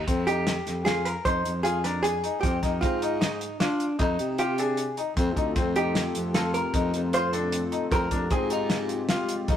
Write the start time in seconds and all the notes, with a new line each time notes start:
0.07 F2 C4, kick, closed hi-hat
0.27 D#4 G4, closed hi-hat
0.47 snare, closed hi-hat
0.66 F2, snare, closed hi-hat
0.85 F4 G#4, snare, closed hi-hat
1.05 A#4, closed hi-hat
1.25 F2 D#4 C5, kick, closed hi-hat
1.45 F2, closed hi-hat
1.63 F4 G#4, closed hi-hat
1.84 D4 A#4, snare, closed hi-hat
2.03 G#4, closed hi-hat
2.24 D#4, closed hi-hat
2.41 F2 C4 G4, kick, closed hi-hat
2.63 F2 D#4, kick, snare, closed hi-hat
2.81 G#2 C4 F4, kick, closed hi-hat
3.02 D#4, closed hi-hat
3.21 D#4, snare, closed hi-hat
3.41 closed hi-hat
3.60 D4 F4, snare, closed hi-hat
3.80 closed hi-hat
3.99 F2 D#4, kick, closed hi-hat
4.19 C3, closed hi-hat
4.38 F4 G4, closed hi-hat
4.58 D4 G#4, closed hi-hat
4.77 closed hi-hat
4.97 D#4, closed hi-hat
5.17 F2 A3 C4 F4 A4, kick, closed hi-hat
5.36 D2 D#4, kick, closed hi-hat
5.56 F2 A3 C4 F4 A4, kick, snare, closed hi-hat
5.76 D#4 G4, closed hi-hat
5.95 A3 C4 F4 A4, snare, closed hi-hat
6.15 F2, closed hi-hat
6.34 A3 C4 F4 G4 A4, snare, closed hi-hat
6.54 A#4, closed hi-hat
6.64 F3 C4 F4 C5
6.74 F2 D#4, kick, closed hi-hat
6.94 F2, closed hi-hat
7.03 A3 C4 F4 A4
7.13 F4 C5, closed hi-hat
7.33 D4 A4, closed hi-hat
7.42 A3 C4 F4 A4
7.52 closed hi-hat
7.72 D#4, closed hi-hat
7.81 A3 C4 F4 A4
7.91 F2 C4 A#4, kick, closed hi-hat
8.11 F2 G#3 C4 D4 F4 G4, kick, closed hi-hat
8.30 G#2 C4 G#4, kick, closed hi-hat
8.49 G#3 C4 D#4 F4 G4, closed hi-hat
8.70 snare, closed hi-hat
8.89 G#3 C4 F4 G4, closed hi-hat
9.09 F4, snare, closed hi-hat
9.29 G#3 C4 F4 G#4, closed hi-hat
9.48 F2 D#4, kick, closed hi-hat